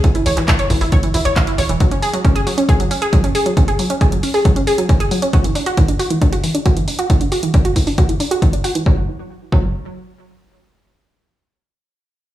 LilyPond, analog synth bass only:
\new Staff \with { instrumentName = "Analog synth bass" } { \clef bass \time 4/4 \key d \lydian \tempo 4 = 136 r8 a,,16 a,,16 r8 a,,16 a,,16 r8 a,,16 a,,16 r8 a,,16 e,,16 | r1 | r1 | r1 |
r1 | r1 | r1 | }